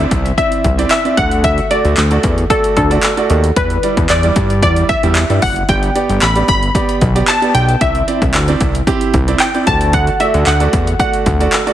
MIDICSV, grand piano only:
0, 0, Header, 1, 2, 480
1, 0, Start_track
1, 0, Tempo, 530973
1, 1303, Time_signature, 4, 2, 24, 8
1, 10604, End_track
2, 0, Start_track
2, 0, Title_t, "Grand piano"
2, 0, Program_c, 0, 0
2, 0, Note_on_c, 0, 60, 81
2, 0, Note_on_c, 0, 64, 71
2, 0, Note_on_c, 0, 74, 83
2, 230, Note_off_c, 0, 60, 0
2, 231, Note_off_c, 0, 64, 0
2, 232, Note_off_c, 0, 74, 0
2, 342, Note_on_c, 0, 60, 76
2, 344, Note_on_c, 0, 64, 67
2, 348, Note_on_c, 0, 74, 82
2, 583, Note_off_c, 0, 60, 0
2, 584, Note_off_c, 0, 64, 0
2, 586, Note_off_c, 0, 74, 0
2, 708, Note_on_c, 0, 60, 76
2, 709, Note_on_c, 0, 64, 72
2, 713, Note_on_c, 0, 74, 86
2, 865, Note_off_c, 0, 60, 0
2, 865, Note_off_c, 0, 64, 0
2, 867, Note_off_c, 0, 74, 0
2, 946, Note_on_c, 0, 60, 76
2, 950, Note_on_c, 0, 64, 69
2, 950, Note_on_c, 0, 74, 87
2, 1050, Note_off_c, 0, 74, 0
2, 1060, Note_off_c, 0, 60, 0
2, 1060, Note_on_c, 0, 57, 77
2, 1061, Note_on_c, 0, 66, 73
2, 1063, Note_off_c, 0, 64, 0
2, 1451, Note_off_c, 0, 57, 0
2, 1451, Note_off_c, 0, 66, 0
2, 1542, Note_on_c, 0, 57, 76
2, 1544, Note_on_c, 0, 66, 75
2, 1546, Note_on_c, 0, 74, 88
2, 1783, Note_off_c, 0, 57, 0
2, 1784, Note_off_c, 0, 66, 0
2, 1785, Note_off_c, 0, 74, 0
2, 1909, Note_on_c, 0, 57, 78
2, 1911, Note_on_c, 0, 66, 71
2, 1913, Note_on_c, 0, 74, 83
2, 2150, Note_off_c, 0, 57, 0
2, 2151, Note_off_c, 0, 66, 0
2, 2152, Note_off_c, 0, 74, 0
2, 2262, Note_on_c, 0, 57, 74
2, 2265, Note_on_c, 0, 66, 69
2, 2268, Note_on_c, 0, 74, 84
2, 2503, Note_off_c, 0, 57, 0
2, 2504, Note_off_c, 0, 66, 0
2, 2506, Note_off_c, 0, 74, 0
2, 2628, Note_on_c, 0, 57, 78
2, 2629, Note_on_c, 0, 66, 69
2, 2632, Note_on_c, 0, 74, 83
2, 2785, Note_off_c, 0, 57, 0
2, 2785, Note_off_c, 0, 66, 0
2, 2786, Note_off_c, 0, 74, 0
2, 2866, Note_on_c, 0, 57, 75
2, 2868, Note_on_c, 0, 66, 69
2, 2871, Note_on_c, 0, 74, 85
2, 3109, Note_off_c, 0, 57, 0
2, 3110, Note_off_c, 0, 66, 0
2, 3111, Note_off_c, 0, 74, 0
2, 3221, Note_on_c, 0, 55, 78
2, 3224, Note_on_c, 0, 64, 73
2, 3226, Note_on_c, 0, 74, 85
2, 3387, Note_off_c, 0, 55, 0
2, 3388, Note_off_c, 0, 64, 0
2, 3389, Note_off_c, 0, 74, 0
2, 3461, Note_on_c, 0, 55, 78
2, 3464, Note_on_c, 0, 64, 72
2, 3466, Note_on_c, 0, 74, 85
2, 3703, Note_off_c, 0, 55, 0
2, 3704, Note_off_c, 0, 64, 0
2, 3705, Note_off_c, 0, 74, 0
2, 3829, Note_on_c, 0, 55, 82
2, 3831, Note_on_c, 0, 64, 70
2, 3833, Note_on_c, 0, 74, 91
2, 4070, Note_off_c, 0, 55, 0
2, 4071, Note_off_c, 0, 64, 0
2, 4072, Note_off_c, 0, 74, 0
2, 4182, Note_on_c, 0, 55, 72
2, 4185, Note_on_c, 0, 64, 68
2, 4185, Note_on_c, 0, 74, 81
2, 4423, Note_off_c, 0, 55, 0
2, 4424, Note_off_c, 0, 64, 0
2, 4425, Note_off_c, 0, 74, 0
2, 4547, Note_on_c, 0, 55, 78
2, 4551, Note_on_c, 0, 64, 67
2, 4553, Note_on_c, 0, 67, 80
2, 4704, Note_off_c, 0, 55, 0
2, 4706, Note_off_c, 0, 64, 0
2, 4707, Note_off_c, 0, 67, 0
2, 4788, Note_on_c, 0, 55, 76
2, 4792, Note_on_c, 0, 64, 70
2, 4793, Note_on_c, 0, 74, 84
2, 5030, Note_off_c, 0, 55, 0
2, 5031, Note_off_c, 0, 64, 0
2, 5032, Note_off_c, 0, 74, 0
2, 5142, Note_on_c, 0, 59, 76
2, 5144, Note_on_c, 0, 67, 67
2, 5147, Note_on_c, 0, 74, 86
2, 5307, Note_off_c, 0, 59, 0
2, 5309, Note_off_c, 0, 67, 0
2, 5310, Note_off_c, 0, 74, 0
2, 5380, Note_on_c, 0, 59, 73
2, 5382, Note_on_c, 0, 67, 70
2, 5383, Note_on_c, 0, 74, 85
2, 5622, Note_off_c, 0, 59, 0
2, 5623, Note_off_c, 0, 67, 0
2, 5623, Note_off_c, 0, 74, 0
2, 5745, Note_on_c, 0, 59, 77
2, 5748, Note_on_c, 0, 67, 71
2, 5750, Note_on_c, 0, 74, 84
2, 5988, Note_off_c, 0, 59, 0
2, 5990, Note_off_c, 0, 67, 0
2, 5991, Note_off_c, 0, 74, 0
2, 6100, Note_on_c, 0, 59, 77
2, 6103, Note_on_c, 0, 67, 69
2, 6105, Note_on_c, 0, 74, 84
2, 6342, Note_off_c, 0, 59, 0
2, 6344, Note_off_c, 0, 67, 0
2, 6344, Note_off_c, 0, 74, 0
2, 6466, Note_on_c, 0, 59, 75
2, 6469, Note_on_c, 0, 67, 71
2, 6470, Note_on_c, 0, 74, 85
2, 6624, Note_off_c, 0, 59, 0
2, 6625, Note_off_c, 0, 67, 0
2, 6626, Note_off_c, 0, 74, 0
2, 6704, Note_on_c, 0, 59, 77
2, 6706, Note_on_c, 0, 67, 71
2, 6709, Note_on_c, 0, 74, 81
2, 6948, Note_off_c, 0, 59, 0
2, 6949, Note_off_c, 0, 67, 0
2, 6950, Note_off_c, 0, 74, 0
2, 7058, Note_on_c, 0, 60, 76
2, 7061, Note_on_c, 0, 64, 70
2, 7062, Note_on_c, 0, 74, 84
2, 7226, Note_off_c, 0, 60, 0
2, 7227, Note_off_c, 0, 64, 0
2, 7228, Note_off_c, 0, 74, 0
2, 7299, Note_on_c, 0, 60, 77
2, 7302, Note_on_c, 0, 64, 72
2, 7303, Note_on_c, 0, 74, 85
2, 7542, Note_off_c, 0, 60, 0
2, 7543, Note_off_c, 0, 64, 0
2, 7544, Note_off_c, 0, 74, 0
2, 7667, Note_on_c, 0, 60, 96
2, 7670, Note_on_c, 0, 64, 88
2, 7672, Note_on_c, 0, 74, 101
2, 7909, Note_off_c, 0, 60, 0
2, 7911, Note_off_c, 0, 64, 0
2, 7911, Note_off_c, 0, 74, 0
2, 8018, Note_on_c, 0, 60, 87
2, 8020, Note_on_c, 0, 64, 83
2, 8022, Note_on_c, 0, 67, 99
2, 8261, Note_off_c, 0, 60, 0
2, 8262, Note_off_c, 0, 64, 0
2, 8263, Note_off_c, 0, 67, 0
2, 8386, Note_on_c, 0, 60, 77
2, 8388, Note_on_c, 0, 64, 73
2, 8390, Note_on_c, 0, 74, 84
2, 8544, Note_off_c, 0, 60, 0
2, 8545, Note_off_c, 0, 64, 0
2, 8546, Note_off_c, 0, 74, 0
2, 8626, Note_on_c, 0, 60, 76
2, 8629, Note_on_c, 0, 64, 73
2, 8631, Note_on_c, 0, 74, 84
2, 8727, Note_off_c, 0, 74, 0
2, 8737, Note_on_c, 0, 57, 77
2, 8738, Note_on_c, 0, 66, 72
2, 8741, Note_off_c, 0, 60, 0
2, 8741, Note_on_c, 0, 74, 87
2, 8742, Note_off_c, 0, 64, 0
2, 9129, Note_off_c, 0, 57, 0
2, 9130, Note_off_c, 0, 66, 0
2, 9131, Note_off_c, 0, 74, 0
2, 9220, Note_on_c, 0, 57, 80
2, 9222, Note_on_c, 0, 66, 74
2, 9224, Note_on_c, 0, 74, 83
2, 9462, Note_off_c, 0, 57, 0
2, 9463, Note_off_c, 0, 66, 0
2, 9464, Note_off_c, 0, 74, 0
2, 9585, Note_on_c, 0, 57, 80
2, 9588, Note_on_c, 0, 66, 74
2, 9590, Note_on_c, 0, 74, 91
2, 9828, Note_off_c, 0, 57, 0
2, 9830, Note_off_c, 0, 66, 0
2, 9831, Note_off_c, 0, 74, 0
2, 9938, Note_on_c, 0, 57, 73
2, 9940, Note_on_c, 0, 66, 69
2, 9942, Note_on_c, 0, 74, 82
2, 10181, Note_off_c, 0, 57, 0
2, 10182, Note_off_c, 0, 66, 0
2, 10183, Note_off_c, 0, 74, 0
2, 10307, Note_on_c, 0, 57, 73
2, 10309, Note_on_c, 0, 66, 69
2, 10312, Note_on_c, 0, 74, 84
2, 10464, Note_off_c, 0, 57, 0
2, 10465, Note_off_c, 0, 66, 0
2, 10467, Note_off_c, 0, 74, 0
2, 10545, Note_on_c, 0, 57, 73
2, 10548, Note_on_c, 0, 66, 72
2, 10551, Note_on_c, 0, 74, 88
2, 10604, Note_off_c, 0, 57, 0
2, 10604, Note_off_c, 0, 66, 0
2, 10604, Note_off_c, 0, 74, 0
2, 10604, End_track
0, 0, End_of_file